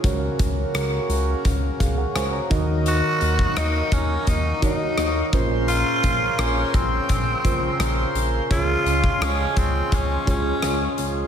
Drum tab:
HH |x-x-x-x-x-x-x-x-|x-x-x-x-x-x-x-x-|x-x-x-x-x-x-x-x-|x-x-x-x-x-x-x-x-|
SD |----r-------r---|----r-------r---|----r-------r---|----r-------r---|
BD |o-o-----o-o---o-|---o--o-o-o---o-|--o---o-o-o-----|o--o--o-o-o-----|